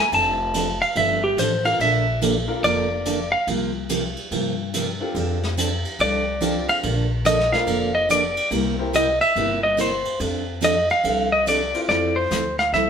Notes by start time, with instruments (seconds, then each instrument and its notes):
0.00 electric slide guitar G#5
0.12 upright bass F1, steel-string acoustic guitar F3 C4 D4 A4, electric slide guitar A5, ride
0.54 steel-string acoustic guitar F3 C4 D4 A4, hi-hat pedal, ride
0.82 electric slide guitar F5, ride
0.96 upright bass G1, steel-string acoustic guitar F3 C4 D4 A4, electric slide guitar E5, ride
1.24 electric slide guitar G4
1.37 upright bass A1, steel-string acoustic guitar F3 C4 D4 A4, electric slide guitar C5, hi-hat pedal, ride
1.64 upright piano A#3 D4 F4 A4 A#4, electric slide guitar F5, ride
1.79 upright bass A#1, steel-string acoustic guitar D3 F3 A#3 D4 A4, electric slide guitar E5, ride
2.21 steel-string acoustic guitar D3 F3 A#3 D4 A4, hi-hat pedal, ride
2.48 upright piano A#3 D4 F4 A4 A#4
2.63 upright bass F1, steel-string acoustic guitar D3 F3 A#3 D4 A4, electric slide guitar D5, ride
3.05 steel-string acoustic guitar D3 F3 A#3 D4 A4, hi-hat pedal, ride
3.32 electric slide guitar F5
3.47 upright bass C2, steel-string acoustic guitar C3 F3 A#3 F4 G4, ride
3.89 steel-string acoustic guitar C3 F3 A#3 F4 G4, hi-hat pedal, ride
4.17 ride
4.31 upright bass G2, steel-string acoustic guitar C3 F3 A#3 F4 G4, ride
4.74 steel-string acoustic guitar C3 F3 A#3 F4 G4, hi-hat pedal, ride
5.00 upright piano C4 D4 F4 G4 A4
5.15 upright bass F2, steel-string acoustic guitar F3 C4 D4 A4, ride
5.43 snare
5.57 steel-string acoustic guitar F3 C4 D4 A4, hi-hat pedal, ride
5.85 ride
5.99 upright bass C2, steel-string acoustic guitar F3 C4 D4 A4, electric slide guitar D5, ride
6.41 steel-string acoustic guitar F3 C4 D4 A4, upright piano C4 D4 F4 G4 A4, hi-hat pedal, ride
6.68 electric slide guitar F5, ride
6.83 upright bass A#1, steel-string acoustic guitar D3 F3 A#3 D4 A4, ride
7.25 steel-string acoustic guitar D3 F3 A#3 D4 A4, electric slide guitar D#5, hi-hat pedal, ride
7.40 snare
7.52 upright piano C4 D4 F4 A4 A#4, electric slide guitar F5, snare
7.67 upright bass F1, steel-string acoustic guitar D3 F3 A#3 D4 A4, ride
7.95 electric slide guitar D#5
8.09 steel-string acoustic guitar D3 F3 A#3 D4 A4, electric slide guitar D5, hi-hat pedal, ride
8.37 ride
8.51 upright bass C2, steel-string acoustic guitar C3 G3 A#3 E4 G4, ride
8.78 upright piano C4 E4 G4 A#4 C5
8.93 steel-string acoustic guitar C3 G3 A#3 E4 G4, electric slide guitar D#5, hi-hat pedal, ride
9.21 electric slide guitar E5, ride
9.36 upright bass G1, steel-string acoustic guitar C3 G3 A#3 E4 G4, ride
9.63 electric slide guitar D#5
9.77 steel-string acoustic guitar C3 G3 A#3 E4 G4, hi-hat pedal, ride
9.81 electric slide guitar C5
10.05 ride
10.19 upright bass F2, steel-string acoustic guitar F3 C4 D4 A4, ride
10.61 steel-string acoustic guitar F3 C4 D4 A4, electric slide guitar D#5, hi-hat pedal, ride
10.90 electric slide guitar F5, ride
11.03 upright bass C2, steel-string acoustic guitar F3 C4 D4 A4, ride
11.32 electric slide guitar D#5
11.46 steel-string acoustic guitar F3 C4 D4 A4, electric slide guitar D5, hi-hat pedal, ride
11.74 upright piano C4 E4 F4 A4 C5, ride
11.88 upright bass F2, steel-string acoustic guitar F3 C4 E4 A4, electric slide guitar D5, brush sweep, snare
12.16 electric slide guitar C5
12.31 upright bass D2, steel-string acoustic guitar F3 C4 E4 A4, snare, hi-hat pedal
12.59 electric slide guitar F5, snare
12.73 upright bass C2, steel-string acoustic guitar F3 C4 E4 A4, electric slide guitar E5, brush sweep, snare